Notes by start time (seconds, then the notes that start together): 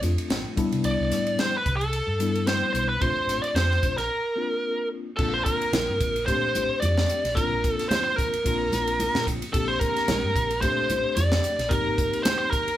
0.02 F2 A3 C4 D4 F4, hi-hat pedal, ride
0.18 muted fingered electric bass stroke, ride
0.30 A1, snare, ride
0.56 G3 B3 D4 E4, muted fingered electric bass stroke, kick, hi-hat pedal, ride
0.72 C3, ride
0.84 C2 D5, ride
0.99 C2
1.12 A2, snare, hi-hat pedal, ride
1.27 ride
1.39 C5, snare, ride
1.57 B4
1.66 C2, kick, hi-hat pedal, ride
1.77 A4
1.81 ride
1.93 ride
2.07 G2
2.19 G3 B3 D4 E4, hi-hat pedal, ride
2.35 ride
2.47 C5, snare, ride
2.73 B1 C5, hi-hat pedal, ride
2.89 B4
3.01 A#1 A3 C4 D4 F4 C5, kick, ride
3.27 A1, snare, hi-hat pedal, ride
3.42 D5, ride
3.54 F2 C5, snare, ride
3.71 snare
3.83 A#1, kick, hi-hat pedal, ride
3.97 A#1 A#4, snare, ride
4.36 A#3 C4 D4 F4
5.17 A#1 A#3 C4 D4 F4 A4, kick, crash, muted conga
5.34 C5
5.45 A#4, kick, hi-hat pedal, ride, muted conga
5.62 ride
5.72 A#1, snare, hi-hat pedal, ride, high conga
5.88 G2
6.00 A#1, kick, hi-hat pedal, ride
6.16 ride
6.26 A#2 A3 C4 D4 G4 C5, kick, hi-hat pedal, ride, muted conga
6.55 A1, hi-hat pedal, ride, high conga
6.80 F2 D5, hi-hat pedal, ride, high conga
6.98 snare
7.09 hi-hat pedal, ride, muted conga
7.24 A#1, snare, ride
7.35 A1 A#3 C4 D4 F4 A#4, kick, hi-hat pedal, ride, muted conga
7.52 A#1
7.64 kick, hi-hat pedal, ride
7.73 A4
7.79 snare, ride
7.89 C5, snare, hi-hat pedal, ride, high conga
8.04 C5
8.16 A#4, kick, hi-hat pedal, ride
8.33 muted fingered electric bass stroke, ride
8.44 A#1 A#3 C4 D4 F4, kick, hi-hat pedal, ride, muted conga
8.72 A#1, snare, hi-hat pedal, ride, high conga
8.87 ride
9.00 hi-hat pedal, ride, high conga
9.14 A#2, snare
9.27 A#1, kick, hi-hat pedal, ride, muted conga
9.42 ride
9.53 A#1 A#3 C4 D4 G4 A4, kick, hi-hat pedal, ride, muted conga
9.68 C5
9.79 A#4, kick, hi-hat pedal, ride, muted conga
9.96 snare, ride
10.08 A#1, snare, hi-hat pedal, ride, high conga
10.23 G2
10.35 A#1, kick, hi-hat pedal, ride
10.51 ride
10.61 A#2 A3 C4 D4 G4 C5, kick, hi-hat pedal, ride, muted conga
10.89 A1, hi-hat pedal, ride, high conga
11.15 F2 D5, hi-hat pedal, ride, high conga
11.32 snare
11.44 hi-hat pedal, ride, muted conga
11.59 A#1, snare, ride
11.69 G#1 A#3 C4 D#4 G4 A#4, kick, hi-hat pedal, ride, muted conga
11.86 G#1
11.98 kick, hi-hat pedal, ride, muted conga
12.13 ride
12.23 C5, snare, hi-hat pedal, ride, high conga
12.39 C5
12.51 A#4, kick, hi-hat pedal, ride
12.67 muted fingered electric bass stroke, ride